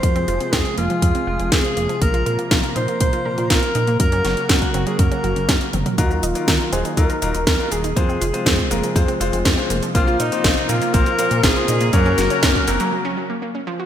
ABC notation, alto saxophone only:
X:1
M:4/4
L:1/16
Q:1/4=121
K:Bbm
V:1 name="Alto saxophone"
c4 A2 F6 A4 | B4 z2 c2 c4 B4 | B4 G3 A B6 z2 | G2 F4 c2 B4 B2 A2- |
A8- A2 z6 | F2 E4 F2 B4 A4 | B8 z8 |]